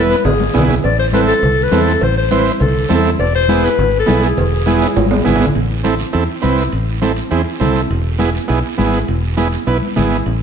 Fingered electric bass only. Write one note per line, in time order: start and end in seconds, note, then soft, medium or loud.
0.00 0.13 E1 medium
0.25 0.48 G#1 medium
0.55 0.78 B1 medium
0.85 1.31 A1 loud
1.43 1.66 C2 medium
1.72 1.95 E2 medium
2.02 2.49 A1 loud
2.61 2.84 C2 medium
2.91 3.14 E2 medium
3.19 3.66 E1 medium
3.79 4.02 G#1 loud
4.09 4.32 B1 loud
4.38 4.85 E1 loud
4.97 5.20 G#1 loud
5.26 5.50 G#1 medium
5.56 6.03 A1 medium
6.15 6.26 E2 medium
6.44 6.67 C2 medium
6.73 7.20 A1 medium
7.32 7.43 E2 medium
7.61 7.85 C2 medium
7.90 8.38 E1 loud
8.50 8.62 B1 medium
8.79 9.03 G#1 medium
9.09 9.56 E1 medium
9.67 9.79 B1 medium
9.97 10.21 G#1 medium
10.26 10.43 A1 loud